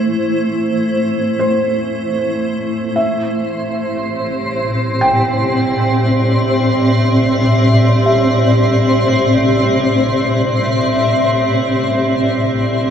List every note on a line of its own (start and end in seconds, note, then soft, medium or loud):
0.00 2.96 A3 medium
0.00 5.39 E4 medium
0.00 4.66 C5 medium
1.39 2.58 C5 medium
2.96 12.90 A2 medium
2.96 12.90 C5 medium
2.96 4.14 E5 medium
2.96 12.90 C6 medium
3.23 12.90 C4 medium
3.34 12.90 G4 medium
4.63 12.90 D5 medium
5.01 12.90 E5 medium
5.01 6.18 G5 medium
8.06 9.22 E5 medium
9.08 10.24 C5 soft